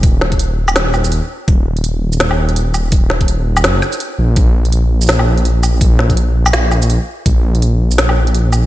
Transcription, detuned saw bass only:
X:1
M:4/4
L:1/16
Q:"Swing 16ths" 1/4=166
K:Ebm
V:1 name="Detuned saw bass" clef=bass
E,,,8- E,,,3 E,,,2 z3 | E,,,16 | E,,,8 G,,,2 z4 B,,,2 | B,,,16 |
B,,,8- B,,,3 B,,,2 z3 | B,,,16 |]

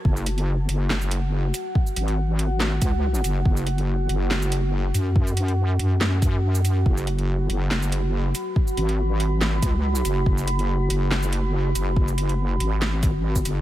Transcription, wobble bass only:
X:1
M:4/4
L:1/8
Q:"Swing 16ths" 1/4=141
K:Bmix
V:1 name="Wobble bass" clef=bass
F,,,3 F,,,4 z | z G,,,4 C,,2 F,,, | F,,,3 F,,,4 F,,- | F,,3 F,,4- F,, |
F,,,3 F,,,4 z | z G,,,4 C,,2 F,,, | F,,,3 F,,,4 F,,,- | F,,,3 G,,,4 F,,, |]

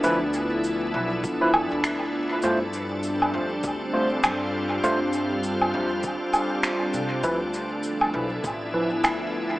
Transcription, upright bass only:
X:1
M:4/4
L:1/16
Q:"Swing 16ths" 1/4=100
K:Ddor
V:1 name="Upright bass" clef=bass
D,,6 B,,,2 z2 F,, D,,4- D,, | G,,6 F,,2 D,,4 G,,4 | G,,6 F,,2 z6 C,2 | D,,6 B,,,2 A,,,4 D,,4 |]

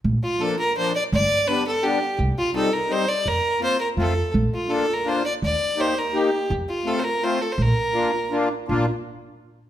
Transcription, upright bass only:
X:1
M:3/4
L:1/8
Q:1/4=167
K:Bb
V:1 name="Upright bass" clef=bass
B,,, z4 z | G,,, z4 z | C,, z4 z | F,, z3 F,,2 |
B,,, z4 z | E,, z4 z | F,, z4 z | B,,, z4 z |
B,,, z4 z |]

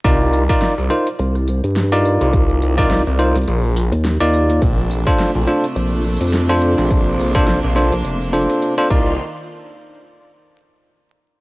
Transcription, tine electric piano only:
X:1
M:4/4
L:1/16
Q:"Swing 16ths" 1/4=105
K:Cdor
V:1 name="Tine electric piano"
[EFBd]3 [EFBd]2 z [EFBc] z6 [EFBd]3- | [EFBd]3 [EFBd]2 z [EFBc] z6 [EFBd]3 | z3 [DFAc]2 z [DFAc] z6 [DFAc]3- | [DFAc]3 [DFAc]2 z [DFAc] z3 [DFAc]3 [DFAc] [EFBd]2 |
z16 |]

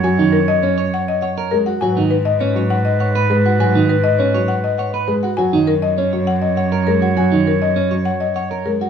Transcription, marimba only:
X:1
M:3/4
L:1/16
Q:1/4=101
K:G#m
V:1 name="Marimba"
g z A d c z f d f z A f | g z B d c z f d f z B f | g z B d c z f d f z B f | g z A d c z f d f z A f |
g z A d c z f d f z A f |]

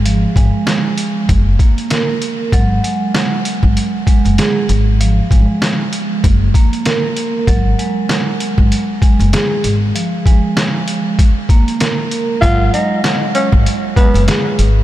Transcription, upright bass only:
X:1
M:4/4
L:1/16
Q:"Swing 16ths" 1/4=97
K:F#
V:1 name="Upright bass" clef=bass
_A,,,2 A,,, z4 z F,,,2 z6 | G,,,2 z4 z G,,, z3 F,,, z2 _A,,,2- | _A,,,2 A,,, z4 z F,,,2 z6 | G,,,2 z4 z G,,, z3 F,,, z2 _A,,,2 |
z16 | G,,,2 z4 z G,,, z3 F,,, z2 G,,,2 |]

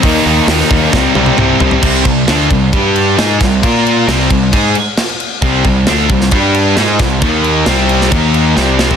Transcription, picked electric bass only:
X:1
M:4/4
L:1/8
Q:1/4=134
K:Cm
V:1 name="Picked electric bass" clef=bass
E,, E,, E,, E,, C,, C,, C,, C,, | C,, C,, D,, C,, G,,2 A,, C,, | B,,2 C,, C,, A,, z3 | C,, C,, D,, C,, G,,2 A,, C,, |
E,,2 C,,2 E,,2 C,,2 |]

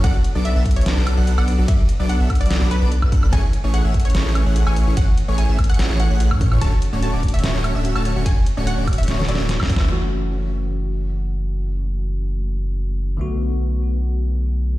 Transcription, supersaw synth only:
X:1
M:4/4
L:1/16
Q:1/4=146
K:F#m
V:1 name="Supersaw synth"
[F,B,DAd] z2 [F,B,DAd]2 [F,B,DAe]2 [F,B,DAd] [F,B,DAd] [F,B,DAd]2 [F,B,DAf]2 [F,B,DAd]2 [F,B,DAd] | [F,B,DAd] z2 [F,B,DAd]2 [F,B,DAe]2 [F,B,DAd] [F,B,DAd] [F,B,DAd] [F,B,DAf] [F,B,DAd] z [F,B,DAe] [F,B,DAf]2 | [E,A,CGc] z2 [E,A,CGc]2 [E,A,CGe]2 [E,A,CGc] [E,A,CGc] [E,A,CGc]2 [E,A,CGf]2 [E,A,CGc]2 [E,A,CGc] | [E,A,CGc] z2 [E,A,CGc]2 [E,A,CGe]2 [E,A,CGc] [E,A,CGc] [E,A,CGc]2 [E,A,CGf]2 [E,A,CGc]2 [E,A,CGc] |
[D,A,CFc] z2 [D,A,CFc]2 [D,A,CFd]2 [D,A,CFc] [D,A,CFc] [D,A,CFc]2 [D,A,CFe]2 [D,A,CFc]2 [D,A,CFc] | [D,A,CFc] z2 [D,A,CFc]2 [D,A,CFd]2 [D,A,CFc] [D,A,CFc] [D,A,CFc] [D,A,CFe] [D,A,CFc] z [D,A,CFd] [D,A,CFe]2 | z16 | z16 |
z16 |]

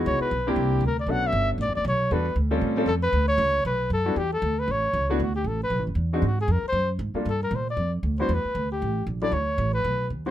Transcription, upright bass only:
X:1
M:4/4
L:1/8
Q:"Swing" 1/4=232
K:D
V:1 name="Upright bass" clef=bass
C,, z B,,,2 =C,,2 D,,2 | B,,,2 G,,,2 (3A,,, F,,, D,,, B,,,2 | E,,2 D,,2 A,,2 ^E,,2 | D,,2 C,,2 B,,,2 F,,2 |
E,,2 D,,2 A,,,2 C,,2 | D,,2 A,,,2 (3B,,, A,,, F,,, E,,2 | ^G,,2 =F,, z ^F,,2 G,, z | G,,2 _B,,2 =F,,2 D,,2 |
E,, z D,,2 A,,,2 _B,,,2 | D,,2 A,,,2 B,,,2 ^D,,2 |]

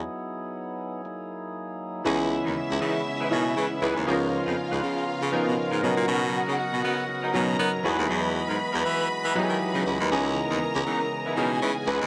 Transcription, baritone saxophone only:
X:1
M:4/4
L:1/16
Q:"Swing 16ths" 1/4=119
K:C#dor
V:1 name="Baritone saxophone" clef=bass
z16 | C,,3 D,, z C,, C,2 z2 B,,2 C, z C,, D,, | C,,3 ^E,, z C,, C,2 C, C, z B,, z G,, B,, A,, | B,,3 C, z B,, B,2 z2 B,,2 B, z E,, D,, |
E,,3 G,, z E,, E,2 E, E, z D, z C, C,, D,, | C,,3 D,, z C,, C,2 z2 B,,2 C, z C,, D,, |]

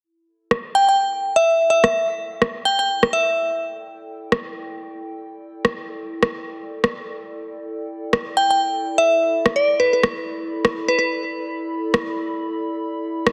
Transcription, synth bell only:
X:1
M:4/4
L:1/16
Q:"Swing 16ths" 1/4=126
K:Em
V:1 name="Synth bell"
z6 g g z3 e3 e e | z6 g g z2 e4 z2 | z16 | z16 |
z6 g g z3 e3 z2 | d2 B B z6 z B B z3 | z16 |]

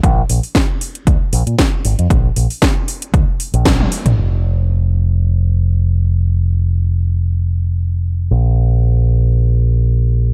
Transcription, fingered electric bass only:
X:1
M:4/4
L:1/16
Q:"Swing 16ths" 1/4=116
K:Bbmix
V:1 name="Fingered electric bass" clef=bass
B,,, z B,,, z4 z D,, z B,,, B,, z2 A,,, F,, | B,,, z B,,, z4 z D,, z2 B,,,2 z2 B,,, | F,,,16- | F,,,16 |
B,,,16 |]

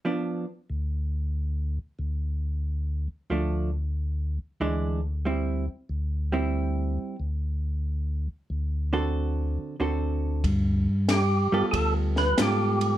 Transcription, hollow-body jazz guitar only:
X:1
M:4/4
L:1/8
Q:"Swing" 1/4=92
K:Ddor
V:1 name="Hollow-body jazz guitar"
[F,B,D] z6 z | z2 [F,A,D] z3 [E,^G,D] z | [G,CE] z2 [G,CE]3 z2 | z3 [D,C^FA]3 [D,CFA]2 |
z3 [G,B,FA]3 [G,B,FA]2 |]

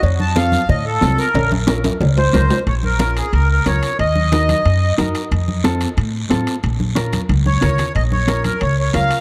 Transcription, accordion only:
X:1
M:4/4
L:1/8
Q:1/4=182
K:Bbm
V:1 name="Accordion"
z =a f2 e =A2 B- | B z4 c3 | d B2 A B B d2 | e6 z2 |
z8 | z4 z d3 | e d2 B d d f2 |]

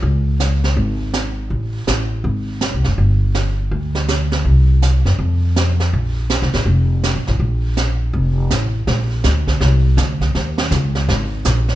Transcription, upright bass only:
X:1
M:4/4
L:1/8
Q:"Swing" 1/4=163
K:Bb
V:1 name="Upright bass" clef=bass
_D,,4 _A,,,4 | A,,,2 A,,,2 _A,,,2- (3A,,, C,, _G,,, | G,,,4 D,,4 | C,,3 _G,, F,,4 |
B,,,2- (3B,,, C,, A,,, F,,,2- (3F,,, B,,, A,,, | B,,,4 F,,,2 A,,,2 | B,,,2 D,,2 C,,2 D,,2 | E,,2 _D,,2 _A,,,2 B,,,2 |]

